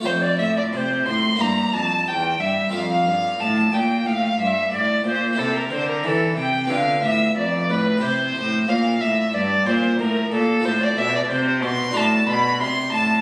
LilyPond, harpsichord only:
<<
  \new Staff \with { instrumentName = "Harpsichord" } { \time 4/4 \key f \major \tempo 4 = 91 <a f' a'>2 <bes e' g'>2 | <c' f' a'>1 | <c' e' g'>2 <b f' b'>2 | <c' e' g'>1 |
\key f \lydian <c' f' a'>2 <d' fis' a'>2 | }
  \new Staff \with { instrumentName = "Harpsichord" } { \clef bass \time 4/4 \key f \major f,8 a,8 c8 a,8 g,8 f,8 e,8 g,8 | f,8 g,8 a,8 bes,8 a,8 g,8 a,8 bes,8 | c8 d8 e8 c8 d8 a,8 f,8 a,8 | c8 a,8 bes,8 a,8 g,8 bes,8 a,8 bes,8 |
\key f \lydian a,8 b,8 c8 b,8 a,8 b,8 c8 a,8 | }
>>